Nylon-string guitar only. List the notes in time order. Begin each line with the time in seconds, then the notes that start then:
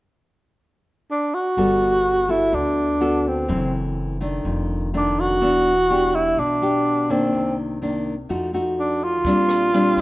1.57 G3 B3 F#4 A4
2.28 B3 F#4 A4
2.52 D3
3.01 B3 F#4 A4
3.48 F#2 E3 A3 C4
4.21 D#3 A3 D4
4.45 F2
4.94 D#3 A3 D4
5.41 E3 B3 D4
5.90 B3 D4 G4
6.38 B2
6.62 B3 D4 G4
7.10 D#3 A#3 D4
7.34 C3
7.82 D#3 A#3 D4
8.29 F3 A3 D#4 F#4
8.53 A3 D#4 F#4
9.26 A#2 G3 C4 D4
9.74 G3 C4 D4